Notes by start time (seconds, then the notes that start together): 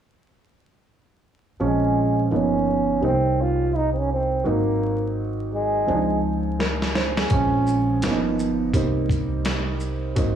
1.60 A#1 F3 G#3 C4 C#4
1.64 G#3
2.31 G1 F3 A#3 B3 C#4 D#4
3.01 C2 G3 A#3 C4 D#4
3.42 F4
3.77 D#4
3.94 C4
3.98 C#4
4.13 C4
4.44 G#1 F#3 A#3 C4 D#4
4.48 A#3
5.54 G#3
5.86 C#2 F3 G#3 C4 D4
5.95 D#4
6.59 A#4, snare
6.82 snare
6.95 C5, snare
7.17 G#4, snare
7.30 A#1 F3 G#3 C4 C#4, kick, closed hi-hat
7.67 shaker
8.02 G1 F3 A#3 B3 C#4, snare, closed hi-hat
8.11 D#4
8.39 shaker
8.73 C2 G3 A#3 C4 D#4, kick, closed hi-hat
9.10 kick, closed hi-hat, shaker
9.45 snare, closed hi-hat
9.80 shaker
10.15 G#1 F#3 A#3 C4 D#4, kick, closed hi-hat